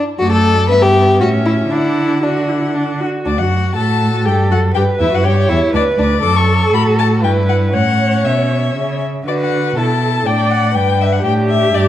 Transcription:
0.19 0.71 F#2 medium
0.19 0.67 A3 medium
0.19 0.31 F#4 medium
0.19 0.72 D5 medium
0.32 0.68 A4 medium
0.69 1.22 G2 medium
0.69 1.21 B3 medium
0.69 0.83 B4 medium
0.69 1.20 E5 medium
0.82 1.20 G4 medium
1.20 1.70 A2 medium
1.20 1.72 C#4 soft
1.20 1.29 F#4 medium
1.20 1.73 E5 soft
1.46 1.54 E4 medium
1.71 3.03 D3 soft
1.71 2.22 D4 soft
1.71 2.24 E4 medium
1.71 2.23 F#5 soft
2.22 2.75 D4 soft
2.22 2.50 F#4 soft
2.22 3.04 F#5 soft
2.49 2.76 E4 soft
2.75 3.02 D4 soft
3.01 3.26 F#4 soft
3.26 3.41 D2 medium
3.26 3.31 D4 medium
3.26 3.39 D5 medium
3.38 3.76 F#2 medium
3.38 3.75 F#4 medium
3.38 3.75 F#5 medium
3.75 4.28 A2 medium
3.75 4.27 F#4 soft
3.75 4.27 A4 medium
3.75 4.24 A5 medium
4.26 4.52 G2 medium
4.26 4.50 G4 medium
4.26 4.74 A4 medium
4.26 4.34 G5 soft
4.50 4.75 F#2 medium
4.50 4.59 F#4 medium
4.50 4.59 F#5 medium
4.74 4.84 G2 medium
4.74 4.84 G4 medium
4.74 5.25 B4 medium
4.74 4.82 G5 medium
4.99 5.05 E2 medium
4.99 5.11 E4 medium
4.99 5.16 E5 medium
5.12 5.26 F#2 soft
5.12 5.26 F#4 medium
5.12 5.27 F#5 medium
5.24 5.49 G2 medium
5.24 5.50 G4 medium
5.24 5.73 C#5 medium
5.24 5.49 G5 medium
5.49 5.58 E2 medium
5.49 5.73 E4 medium
5.49 5.58 E5 medium
5.73 5.82 D2 medium
5.73 5.82 D4 medium
5.73 6.22 B4 medium
5.73 5.83 D5 medium
5.98 6.22 D2 medium
5.98 6.07 D4 medium
5.98 6.24 D5 medium
6.23 6.70 F#2 medium
6.23 7.21 A4 medium
6.23 6.75 A4 medium
6.23 6.37 D6 medium
6.36 6.73 C#6 medium
6.73 7.24 A2 medium
6.73 7.25 F#4 soft
6.73 6.82 B5 medium
6.99 7.07 A5 medium
7.23 7.75 G2 medium
7.23 7.73 E4 soft
7.23 7.75 B4 medium
7.23 7.32 G5 medium
7.49 7.57 F#5 medium
7.73 8.26 A2 medium
7.73 9.04 C#4 soft
7.73 9.01 C#5 medium
7.73 8.26 F#5 medium
8.24 8.75 B2 soft
8.24 9.01 E5 medium
8.75 9.25 C#3 soft
9.26 9.75 D3 medium
9.26 9.79 F#4 soft
9.26 9.78 B4 medium
9.26 9.33 D5 medium
9.40 9.76 F#5 medium
9.76 10.24 B2 soft
9.76 10.26 E4 soft
9.76 10.27 A4 soft
9.76 10.28 A5 medium
10.25 10.76 A2 medium
10.25 10.74 D4 soft
10.25 10.74 D5 medium
10.25 10.52 G5 medium
10.50 10.76 F#5 medium
10.74 11.24 G2 medium
10.74 11.72 D4 soft
10.74 11.23 B4 soft
10.74 11.02 G5 medium
11.01 11.13 E5 medium
11.12 11.24 F#5 soft
11.24 11.72 A2 medium
11.24 11.88 G4 medium
11.24 11.32 G5 medium
11.49 11.76 E5 medium
11.73 11.88 G2 medium
11.73 11.88 D4 medium
11.73 11.88 D5 medium

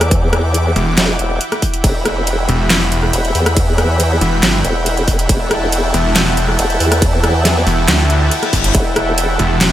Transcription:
0.00 0.74 E2 loud
0.00 9.72 E4 medium
0.00 9.72 E5 medium
0.00 9.72 F#5 medium
0.00 9.72 G5 medium
0.00 1.83 D6 medium
0.00 cross-stick medium
0.00 closed hi-hat medium
0.11 kick loud
0.11 closed hi-hat medium
0.33 cross-stick medium
0.33 closed hi-hat soft
0.54 closed hi-hat medium
0.76 0.96 E1 loud
0.76 closed hi-hat medium
0.98 1.18 E1 medium
0.98 snare loud
0.98 clap medium
0.98 closed hi-hat medium
1.19 1.39 E1 loud
1.19 closed hi-hat medium
1.41 closed hi-hat medium
1.52 cross-stick medium
1.52 closed hi-hat soft
1.62 kick medium
1.62 open hi-hat medium
1.74 closed hi-hat medium
1.84 2.47 E1 medium
1.84 5.28 B5 medium
1.84 kick loud
1.84 closed hi-hat medium
1.84 ride medium
2.05 cross-stick medium
2.05 closed hi-hat soft
2.27 closed hi-hat medium
2.27 ride soft
2.49 3.12 E1 loud
2.49 closed hi-hat soft
2.70 snare loud
2.70 clap medium
2.70 closed hi-hat medium
2.70 ride medium
2.92 closed hi-hat soft
3.03 cross-stick medium
3.13 3.33 E1 loud
3.13 closed hi-hat medium
3.13 ride soft
3.25 closed hi-hat soft
3.35 4.20 E2 loud
3.35 open hi-hat medium
3.46 cross-stick medium
3.46 closed hi-hat medium
3.57 kick loud
3.57 closed hi-hat medium
3.57 ride medium
3.78 cross-stick medium
3.78 closed hi-hat soft
4.00 closed hi-hat medium
4.00 ride soft
4.21 4.41 E1 loud
4.21 closed hi-hat medium
4.43 4.63 G1 loud
4.43 snare loud
4.43 clap medium
4.43 closed hi-hat medium
4.43 ride medium
4.64 5.28 E1 medium
4.64 closed hi-hat medium
4.86 closed hi-hat medium
4.86 ride soft
4.97 closed hi-hat soft
5.08 kick medium
5.08 open hi-hat medium
5.19 closed hi-hat medium
5.29 5.92 E1 loud
5.29 8.73 A5 medium
5.29 kick loud
5.29 closed hi-hat medium
5.29 ride medium
5.51 cross-stick medium
5.51 closed hi-hat medium
5.72 closed hi-hat medium
5.72 ride soft
5.94 6.57 E1 loud
5.94 closed hi-hat medium
6.16 snare loud
6.16 clap medium
6.16 closed hi-hat medium
6.16 ride medium
6.37 closed hi-hat medium
6.49 cross-stick medium
6.59 6.79 E1 medium
6.59 closed hi-hat medium
6.59 ride soft
6.70 closed hi-hat soft
6.80 7.65 E2 loud
6.80 open hi-hat loud
6.92 cross-stick medium
6.92 closed hi-hat medium
7.02 kick loud
7.02 closed hi-hat medium
7.02 ride medium
7.24 cross-stick medium
7.24 closed hi-hat medium
7.45 snare medium
7.45 closed hi-hat medium
7.45 ride soft
7.67 7.87 E1 loud
7.67 open hi-hat medium
7.88 8.30 D2 loud
7.88 snare loud
7.88 clap medium
7.88 closed hi-hat medium
7.88 ride medium
7.88 reverse cymbal medium
8.10 closed hi-hat medium
8.31 closed hi-hat medium
8.31 ride soft
8.43 cross-stick medium
8.43 closed hi-hat soft
8.53 8.73 G1 loud
8.53 kick medium
8.53 open hi-hat loud
8.64 closed hi-hat medium
8.75 9.38 E1 loud
8.75 9.72 A5 medium
8.75 kick loud
8.75 closed hi-hat medium
8.75 ride medium
8.96 cross-stick medium
8.96 closed hi-hat medium
9.18 closed hi-hat medium
9.18 ride soft
9.39 9.72 E1 medium
9.39 closed hi-hat medium
9.61 snare loud
9.61 clap medium
9.61 closed hi-hat medium
9.61 ride medium

